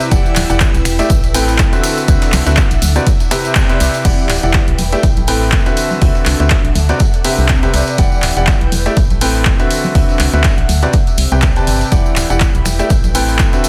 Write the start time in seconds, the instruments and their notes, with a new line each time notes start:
Already playing: analog synth pad C4 G4 D5 E5, string machine E4 E5
0.00 ride, tambourine
0.11 fm bass E1, grand piano E3 E4 G4 D5 F#5, analog synth pad E4, kick, closed hi-hat, ride, tambourine
0.26 tambourine
0.36 fm bass D1, clap, open hi-hat, ride, tambourine, high conga
0.44 analog synth pad B4
0.49 fm bass E1, grand piano E3 E4 G4 D5 F#5, closed hi-hat, tambourine
0.56 analog synth pad G5
0.60 kick, snare, clap, closed hi-hat, ride, tambourine
0.74 fm bass B1, closed hi-hat, tambourine
0.85 fm bass E1, finger snap, open hi-hat, ride, tambourine
0.99 grand piano A3 E4 G4 D5 E5, snare, closed hi-hat, tambourine
1.10 fm bass A1, analog synth pad A4, kick, closed hi-hat, ride, tambourine
1.24 analog synth pad E5, closed hi-hat, tambourine
1.34 grand piano A2 C4 A4 B4 G5, open hi-hat, ride, tambourine
1.48 snare, tambourine
1.58 kick, snare, clap, closed hi-hat, ride, tambourine
1.73 grand piano D3 C4 F#4 B4 E5, closed hi-hat, ride, tambourine
1.84 analog synth pad D4, snare, open hi-hat, ride, tambourine
1.97 ride, tambourine
2.03 analog synth pad F#5
2.08 fm bass D2, grand piano D3 C4 F#4 B4 E5, kick, closed hi-hat, ride, tambourine
2.22 snare, closed hi-hat, ride, tambourine
2.32 fm bass C2, clap, open hi-hat, ride, tambourine, high conga
2.46 fm bass D2, grand piano D3 C4 F#4 B4 E5, closed hi-hat, ride, tambourine
2.56 kick, snare, clap, closed hi-hat, ride, tambourine
2.71 fm bass A1, closed hi-hat, ride, tambourine
2.82 fm bass D2, open hi-hat, ride, tambourine, high conga
2.96 grand piano C3 C4 F#4 B4 D5, closed hi-hat, tambourine
3.06 analog synth pad C4, kick, closed hi-hat, ride, tambourine
3.12 analog synth pad G4
3.18 analog synth pad D5, closed hi-hat, tambourine
3.31 grand piano C3 C4 G4 B4 E5, finger snap, snare, open hi-hat, ride, tambourine
3.45 closed hi-hat, tambourine
3.55 kick, snare, clap, closed hi-hat, ride, tambourine
3.69 grand piano C3 C4 G4 B4 E5, closed hi-hat, ride, tambourine
3.80 fm bass C2, open hi-hat, ride, tambourine
3.94 ride, tambourine
4.05 fm bass E1, grand piano E3 E4 G4 D5 F#5, analog synth pad E4, kick, closed hi-hat, crash, ride, tambourine
4.19 analog synth pad B4, tambourine
4.29 fm bass D1, clap, open hi-hat, ride, tambourine
4.43 fm bass E1, grand piano E3 E4 G4 D5 F#5, closed hi-hat, tambourine
4.50 analog synth pad G5, clap
4.54 kick, snare, closed hi-hat, ride, tambourine
4.68 fm bass B1, closed hi-hat
4.78 fm bass E1, open hi-hat, ride, tambourine, high conga
4.92 grand piano A3 E4 G4 D5 E5, snare, closed hi-hat, tambourine
5.03 fm bass A1, analog synth pad A4, kick, closed hi-hat, ride, tambourine
5.17 closed hi-hat, tambourine, high conga
5.27 grand piano A2 C4 A4 B4 G5, analog synth pad E5, open hi-hat, ride, tambourine
5.42 snare, tambourine
5.52 kick, snare, clap, closed hi-hat, ride, tambourine
5.66 grand piano D3 C4 F#4 B4 E5, closed hi-hat, ride, tambourine
5.77 analog synth pad D4, open hi-hat, ride, tambourine
5.91 snare, tambourine, high conga
6.02 fm bass D2, grand piano D3 C4 F#4 B4 E5, kick, closed hi-hat, open hi-hat, tambourine
6.15 snare, tambourine
6.26 fm bass C2, clap, open hi-hat, ride, tambourine
6.33 analog synth pad F#5
6.40 fm bass D2, grand piano D3 C4 F#4 B4 E5, snare, closed hi-hat, tambourine
6.50 kick, snare, clap, closed hi-hat, ride, tambourine
6.65 fm bass A1, closed hi-hat
6.75 fm bass D2, open hi-hat, ride, tambourine, high conga
6.89 grand piano C3 C4 F#4 B4 D5, snare, closed hi-hat, tambourine
6.99 analog synth pad C4, kick, closed hi-hat, ride, tambourine
7.14 closed hi-hat, tambourine
7.24 grand piano C3 C4 G4 B4 E5, open hi-hat, ride, tambourine
7.29 analog synth pad G4
7.38 fm bass C2, analog synth pad D5, tambourine
7.49 kick, snare, clap, closed hi-hat, ride, tambourine
7.63 grand piano C3 C4 G4 B4 E5, closed hi-hat, ride, tambourine
7.74 fm bass C2, snare, open hi-hat, ride, tambourine
7.87 ride, tambourine
7.98 fm bass E1, grand piano E3 E4 G4 D5 F#5, analog synth pad E4, kick, closed hi-hat, ride, tambourine
8.11 analog synth pad B4 G5, tambourine
8.22 fm bass D1, clap, open hi-hat, ride, tambourine
8.37 fm bass E1, grand piano E3 E4 G4 D5 F#5, closed hi-hat, tambourine
8.47 kick, snare, clap, closed hi-hat, ride, tambourine
8.61 fm bass B1, closed hi-hat
8.72 fm bass E1, open hi-hat, ride, tambourine, high conga
8.86 grand piano A3 E4 G4 D5 E5, snare, closed hi-hat, tambourine
8.97 fm bass A1, analog synth pad A4, kick, closed hi-hat, ride, tambourine
9.10 closed hi-hat, tambourine, high conga
9.18 grand piano A2 C4 A4 B4 G5, analog synth pad E5, open hi-hat, ride, tambourine
9.34 snare, tambourine
9.45 kick, snare, clap, closed hi-hat, ride, tambourine
9.60 grand piano D3 C4 F#4 B4 E5, closed hi-hat, ride, tambourine
9.71 analog synth pad D4, open hi-hat, ride, tambourine
9.84 snare, tambourine, high conga
9.95 fm bass D2, grand piano D3 C4 F#4 B4 E5, analog synth pad F#5, kick, closed hi-hat, open hi-hat, tambourine
10.09 snare, tambourine
10.19 fm bass C2, clap, open hi-hat, ride, tambourine
10.33 fm bass D2, grand piano D3 C4 F#4 B4 E5, snare, tambourine
10.44 kick, snare, clap, closed hi-hat, ride, tambourine
10.58 fm bass A1, closed hi-hat
10.69 fm bass D2, open hi-hat, ride, tambourine, high conga
10.82 grand piano C3 C4 F#4 B4 D5, snare, closed hi-hat, tambourine
10.93 analog synth pad C4, kick, closed hi-hat, ride, tambourine
10.99 analog synth pad G4
11.05 analog synth pad D5, closed hi-hat, tambourine
11.17 fm bass C2, open hi-hat, ride, tambourine
11.32 fm bass C2, grand piano C3 C4 G4 B4 G5, closed hi-hat, tambourine
11.42 kick, snare, clap, closed hi-hat, ride, tambourine
11.56 grand piano C3 C4 G4 B4 A5, closed hi-hat, ride, tambourine
11.67 fm bass G1, open hi-hat, ride, tambourine
11.81 ride, tambourine
11.92 fm bass E1, grand piano E3 E4 G4 D5 F#5, analog synth pad E4, kick, closed hi-hat, ride, tambourine
12.06 tambourine
12.16 fm bass D1, analog synth pad B4, clap, open hi-hat, ride, tambourine
12.30 fm bass E1, grand piano E3 E4 G4 D5 F#5, closed hi-hat, tambourine
12.35 analog synth pad G5
12.40 kick, snare, clap, closed hi-hat, ride, tambourine
12.55 fm bass B1, closed hi-hat, tambourine
12.65 fm bass E1, finger snap, open hi-hat, ride, tambourine, high conga
12.79 grand piano A3 E4 G4 D5 E5, snare, closed hi-hat, tambourine
12.89 fm bass A1, analog synth pad A4, kick, closed hi-hat, ride, tambourine
13.04 closed hi-hat, tambourine, high conga
13.15 grand piano A2 C4 A4 B4 G5, open hi-hat, ride, tambourine
13.20 analog synth pad E5
13.28 snare, tambourine
13.39 kick, snare, clap, closed hi-hat, ride, tambourine
13.53 grand piano D3 C4 F#4 B4 E5, closed hi-hat, ride, tambourine
13.64 analog synth pad D4, open hi-hat, ride, tambourine